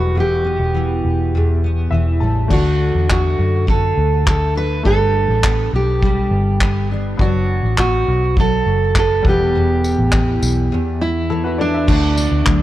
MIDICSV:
0, 0, Header, 1, 6, 480
1, 0, Start_track
1, 0, Key_signature, 2, "major"
1, 0, Tempo, 585938
1, 133, Time_signature, 4, 2, 24, 8
1, 10342, End_track
2, 0, Start_track
2, 0, Title_t, "Steel-string acoustic guitar"
2, 0, Program_c, 0, 25
2, 0, Note_on_c, 0, 66, 83
2, 156, Note_off_c, 0, 66, 0
2, 167, Note_on_c, 0, 67, 81
2, 1798, Note_off_c, 0, 67, 0
2, 2069, Note_on_c, 0, 66, 82
2, 2542, Note_off_c, 0, 66, 0
2, 2551, Note_on_c, 0, 66, 74
2, 2990, Note_off_c, 0, 66, 0
2, 3025, Note_on_c, 0, 69, 80
2, 3495, Note_off_c, 0, 69, 0
2, 3505, Note_on_c, 0, 69, 82
2, 3742, Note_off_c, 0, 69, 0
2, 3745, Note_on_c, 0, 71, 93
2, 3978, Note_off_c, 0, 71, 0
2, 3981, Note_on_c, 0, 69, 101
2, 4666, Note_off_c, 0, 69, 0
2, 4715, Note_on_c, 0, 67, 73
2, 5633, Note_off_c, 0, 67, 0
2, 5910, Note_on_c, 0, 66, 99
2, 6375, Note_off_c, 0, 66, 0
2, 6384, Note_on_c, 0, 66, 89
2, 6875, Note_off_c, 0, 66, 0
2, 6879, Note_on_c, 0, 69, 103
2, 7352, Note_off_c, 0, 69, 0
2, 7362, Note_on_c, 0, 69, 89
2, 7573, Note_off_c, 0, 69, 0
2, 7610, Note_on_c, 0, 67, 88
2, 8999, Note_off_c, 0, 67, 0
2, 9023, Note_on_c, 0, 64, 104
2, 9506, Note_off_c, 0, 64, 0
2, 9510, Note_on_c, 0, 62, 94
2, 10342, Note_off_c, 0, 62, 0
2, 10342, End_track
3, 0, Start_track
3, 0, Title_t, "Upright piano"
3, 0, Program_c, 1, 0
3, 0, Note_on_c, 1, 55, 56
3, 0, Note_on_c, 1, 64, 55
3, 0, Note_on_c, 1, 71, 61
3, 0, Note_on_c, 1, 78, 52
3, 42, Control_c, 1, 64, 127
3, 1562, Note_on_c, 1, 76, 64
3, 1767, Note_off_c, 1, 55, 0
3, 1772, Note_off_c, 1, 64, 0
3, 1778, Note_off_c, 1, 78, 0
3, 1784, Note_off_c, 1, 71, 0
3, 1791, Note_off_c, 1, 76, 0
3, 1805, Note_on_c, 1, 81, 58
3, 2032, Note_off_c, 1, 81, 0
3, 2032, Note_on_c, 1, 57, 60
3, 2042, Note_on_c, 1, 62, 57
3, 2047, Note_on_c, 1, 66, 54
3, 2062, Note_on_c, 1, 74, 65
3, 2066, Control_c, 1, 64, 0
3, 2214, Control_c, 1, 64, 127
3, 3931, Note_off_c, 1, 57, 0
3, 3936, Note_off_c, 1, 62, 0
3, 3939, Note_off_c, 1, 66, 0
3, 3946, Note_off_c, 1, 74, 0
3, 3958, Note_on_c, 1, 57, 65
3, 3970, Note_on_c, 1, 62, 58
3, 3976, Note_on_c, 1, 67, 56
3, 3986, Control_c, 1, 64, 0
3, 3990, Note_on_c, 1, 71, 65
3, 4145, Control_c, 1, 64, 127
3, 5855, Note_off_c, 1, 57, 0
3, 5861, Note_off_c, 1, 62, 0
3, 5864, Note_off_c, 1, 67, 0
3, 5871, Note_off_c, 1, 71, 0
3, 5879, Note_on_c, 1, 59, 64
3, 5890, Note_on_c, 1, 62, 56
3, 5901, Note_on_c, 1, 66, 59
3, 5908, Control_c, 1, 64, 0
3, 5909, Note_on_c, 1, 74, 69
3, 6068, Control_c, 1, 64, 127
3, 7534, Note_off_c, 1, 59, 0
3, 7540, Note_off_c, 1, 62, 0
3, 7546, Note_off_c, 1, 66, 0
3, 7550, Note_off_c, 1, 74, 0
3, 7555, Note_on_c, 1, 55, 64
3, 7564, Note_on_c, 1, 64, 52
3, 7574, Note_on_c, 1, 78, 56
3, 7586, Note_on_c, 1, 71, 67
3, 7587, Control_c, 1, 64, 0
3, 7708, Control_c, 1, 64, 127
3, 9215, Note_off_c, 1, 64, 0
3, 9220, Note_off_c, 1, 78, 0
3, 9226, Note_off_c, 1, 71, 0
3, 9255, Note_on_c, 1, 69, 61
3, 9256, Note_on_c, 1, 64, 58
3, 9368, Note_off_c, 1, 69, 0
3, 9369, Note_off_c, 1, 64, 0
3, 9370, Note_on_c, 1, 71, 71
3, 9372, Note_on_c, 1, 66, 56
3, 9450, Note_off_c, 1, 55, 0
3, 9486, Note_off_c, 1, 71, 0
3, 9487, Note_off_c, 1, 66, 0
3, 9488, Note_on_c, 1, 74, 71
3, 9493, Note_on_c, 1, 69, 60
3, 9604, Note_off_c, 1, 74, 0
3, 9607, Note_off_c, 1, 69, 0
3, 9620, Note_on_c, 1, 76, 59
3, 9627, Note_on_c, 1, 71, 50
3, 9726, Note_on_c, 1, 57, 67
3, 9734, Note_on_c, 1, 62, 62
3, 9744, Control_c, 1, 64, 0
3, 9749, Note_on_c, 1, 66, 58
3, 9760, Note_on_c, 1, 74, 71
3, 9844, Note_off_c, 1, 76, 0
3, 9848, Note_off_c, 1, 71, 0
3, 9883, Control_c, 1, 64, 127
3, 10342, Note_off_c, 1, 57, 0
3, 10342, Note_off_c, 1, 62, 0
3, 10342, Note_off_c, 1, 66, 0
3, 10342, Note_off_c, 1, 74, 0
3, 10342, End_track
4, 0, Start_track
4, 0, Title_t, "Steel-string acoustic guitar"
4, 0, Program_c, 2, 25
4, 0, Note_on_c, 2, 40, 63
4, 0, Note_on_c, 2, 54, 72
4, 0, Note_on_c, 2, 59, 57
4, 0, Note_on_c, 2, 66, 54
4, 117, Note_off_c, 2, 40, 0
4, 127, Note_on_c, 2, 40, 70
4, 128, Note_off_c, 2, 66, 0
4, 131, Note_on_c, 2, 66, 66
4, 151, Note_off_c, 2, 54, 0
4, 369, Note_off_c, 2, 59, 0
4, 369, Note_on_c, 2, 59, 51
4, 612, Note_on_c, 2, 52, 57
4, 1090, Note_off_c, 2, 40, 0
4, 1105, Note_on_c, 2, 40, 79
4, 1130, Note_off_c, 2, 66, 0
4, 1331, Note_off_c, 2, 59, 0
4, 1344, Note_on_c, 2, 59, 54
4, 1564, Note_off_c, 2, 52, 0
4, 1574, Note_on_c, 2, 52, 56
4, 1811, Note_on_c, 2, 55, 43
4, 2056, Note_off_c, 2, 52, 0
4, 2059, Note_on_c, 2, 50, 68
4, 2101, Note_off_c, 2, 55, 0
4, 2108, Note_off_c, 2, 40, 0
4, 2108, Note_off_c, 2, 59, 0
4, 2534, Note_on_c, 2, 57, 64
4, 3003, Note_off_c, 2, 50, 0
4, 3006, Note_on_c, 2, 50, 80
4, 3486, Note_off_c, 2, 57, 0
4, 3489, Note_on_c, 2, 57, 59
4, 3729, Note_on_c, 2, 62, 51
4, 3968, Note_off_c, 2, 50, 0
4, 3971, Note_on_c, 2, 55, 79
4, 4453, Note_off_c, 2, 57, 0
4, 4457, Note_on_c, 2, 59, 62
4, 4930, Note_off_c, 2, 55, 0
4, 4940, Note_on_c, 2, 55, 80
4, 5417, Note_off_c, 2, 59, 0
4, 5421, Note_on_c, 2, 59, 60
4, 5663, Note_off_c, 2, 62, 0
4, 5666, Note_on_c, 2, 62, 51
4, 5898, Note_off_c, 2, 55, 0
4, 5910, Note_on_c, 2, 54, 80
4, 5949, Note_off_c, 2, 62, 0
4, 6376, Note_off_c, 2, 59, 0
4, 6379, Note_on_c, 2, 59, 63
4, 6862, Note_off_c, 2, 54, 0
4, 6866, Note_on_c, 2, 54, 76
4, 7339, Note_off_c, 2, 59, 0
4, 7343, Note_on_c, 2, 59, 66
4, 7585, Note_on_c, 2, 40, 70
4, 7815, Note_off_c, 2, 40, 0
4, 7825, Note_on_c, 2, 40, 76
4, 7850, Note_off_c, 2, 54, 0
4, 8301, Note_on_c, 2, 52, 64
4, 8772, Note_off_c, 2, 40, 0
4, 8782, Note_on_c, 2, 40, 85
4, 9247, Note_off_c, 2, 52, 0
4, 9257, Note_on_c, 2, 52, 66
4, 9493, Note_on_c, 2, 64, 53
4, 9727, Note_on_c, 2, 50, 79
4, 9780, Note_off_c, 2, 64, 0
4, 9782, Note_off_c, 2, 52, 0
4, 9784, Note_off_c, 2, 40, 0
4, 9969, Note_on_c, 2, 62, 61
4, 10201, Note_on_c, 2, 54, 64
4, 10210, Note_off_c, 2, 59, 0
4, 10342, Note_off_c, 2, 50, 0
4, 10342, Note_off_c, 2, 54, 0
4, 10342, Note_off_c, 2, 62, 0
4, 10342, End_track
5, 0, Start_track
5, 0, Title_t, "Fingered electric bass"
5, 0, Program_c, 3, 33
5, 0, Note_on_c, 3, 28, 77
5, 455, Note_off_c, 3, 28, 0
5, 490, Note_on_c, 3, 28, 83
5, 823, Note_off_c, 3, 28, 0
5, 857, Note_on_c, 3, 28, 83
5, 1543, Note_off_c, 3, 28, 0
5, 1569, Note_on_c, 3, 28, 69
5, 1792, Note_off_c, 3, 28, 0
5, 1812, Note_on_c, 3, 33, 67
5, 2034, Note_off_c, 3, 33, 0
5, 2052, Note_on_c, 3, 38, 94
5, 2384, Note_off_c, 3, 38, 0
5, 2414, Note_on_c, 3, 40, 78
5, 2745, Note_off_c, 3, 40, 0
5, 2774, Note_on_c, 3, 42, 82
5, 3222, Note_off_c, 3, 42, 0
5, 3254, Note_on_c, 3, 38, 87
5, 3942, Note_off_c, 3, 38, 0
5, 3973, Note_on_c, 3, 31, 100
5, 4306, Note_off_c, 3, 31, 0
5, 4328, Note_on_c, 3, 33, 84
5, 4663, Note_off_c, 3, 33, 0
5, 4697, Note_on_c, 3, 35, 86
5, 5144, Note_off_c, 3, 35, 0
5, 5168, Note_on_c, 3, 31, 95
5, 5859, Note_off_c, 3, 31, 0
5, 5893, Note_on_c, 3, 30, 98
5, 6226, Note_off_c, 3, 30, 0
5, 6253, Note_on_c, 3, 33, 85
5, 6585, Note_off_c, 3, 33, 0
5, 6621, Note_on_c, 3, 35, 98
5, 7066, Note_off_c, 3, 35, 0
5, 7096, Note_on_c, 3, 30, 96
5, 7543, Note_off_c, 3, 30, 0
5, 7579, Note_on_c, 3, 28, 93
5, 8144, Note_off_c, 3, 28, 0
5, 8181, Note_on_c, 3, 33, 76
5, 8510, Note_off_c, 3, 33, 0
5, 8540, Note_on_c, 3, 35, 90
5, 8758, Note_off_c, 3, 35, 0
5, 9733, Note_on_c, 3, 38, 105
5, 10063, Note_off_c, 3, 38, 0
5, 10089, Note_on_c, 3, 38, 94
5, 10200, Note_off_c, 3, 38, 0
5, 10209, Note_on_c, 3, 38, 103
5, 10342, Note_off_c, 3, 38, 0
5, 10342, End_track
6, 0, Start_track
6, 0, Title_t, "Drums"
6, 2052, Note_on_c, 9, 36, 100
6, 2054, Note_on_c, 9, 49, 72
6, 2134, Note_off_c, 9, 36, 0
6, 2136, Note_off_c, 9, 49, 0
6, 2535, Note_on_c, 9, 36, 84
6, 2536, Note_on_c, 9, 39, 94
6, 2616, Note_off_c, 9, 36, 0
6, 2618, Note_off_c, 9, 39, 0
6, 3016, Note_on_c, 9, 36, 100
6, 3098, Note_off_c, 9, 36, 0
6, 3495, Note_on_c, 9, 36, 97
6, 3499, Note_on_c, 9, 39, 90
6, 3577, Note_off_c, 9, 36, 0
6, 3580, Note_off_c, 9, 39, 0
6, 3975, Note_on_c, 9, 36, 96
6, 4057, Note_off_c, 9, 36, 0
6, 4455, Note_on_c, 9, 39, 102
6, 4456, Note_on_c, 9, 36, 92
6, 4536, Note_off_c, 9, 39, 0
6, 4537, Note_off_c, 9, 36, 0
6, 4935, Note_on_c, 9, 36, 94
6, 5017, Note_off_c, 9, 36, 0
6, 5413, Note_on_c, 9, 36, 97
6, 5413, Note_on_c, 9, 39, 93
6, 5495, Note_off_c, 9, 36, 0
6, 5495, Note_off_c, 9, 39, 0
6, 5894, Note_on_c, 9, 36, 105
6, 5976, Note_off_c, 9, 36, 0
6, 6372, Note_on_c, 9, 39, 102
6, 6375, Note_on_c, 9, 36, 91
6, 6454, Note_off_c, 9, 39, 0
6, 6457, Note_off_c, 9, 36, 0
6, 6855, Note_on_c, 9, 36, 99
6, 6937, Note_off_c, 9, 36, 0
6, 7334, Note_on_c, 9, 36, 104
6, 7335, Note_on_c, 9, 39, 100
6, 7416, Note_off_c, 9, 36, 0
6, 7417, Note_off_c, 9, 39, 0
6, 7576, Note_on_c, 9, 36, 106
6, 7658, Note_off_c, 9, 36, 0
6, 8064, Note_on_c, 9, 54, 53
6, 8145, Note_off_c, 9, 54, 0
6, 8292, Note_on_c, 9, 39, 103
6, 8297, Note_on_c, 9, 36, 97
6, 8374, Note_off_c, 9, 39, 0
6, 8379, Note_off_c, 9, 36, 0
6, 8541, Note_on_c, 9, 54, 65
6, 8623, Note_off_c, 9, 54, 0
6, 9733, Note_on_c, 9, 36, 110
6, 9734, Note_on_c, 9, 49, 88
6, 9815, Note_off_c, 9, 36, 0
6, 9816, Note_off_c, 9, 49, 0
6, 9974, Note_on_c, 9, 54, 60
6, 10056, Note_off_c, 9, 54, 0
6, 10210, Note_on_c, 9, 39, 102
6, 10212, Note_on_c, 9, 36, 108
6, 10292, Note_off_c, 9, 39, 0
6, 10294, Note_off_c, 9, 36, 0
6, 10342, End_track
0, 0, End_of_file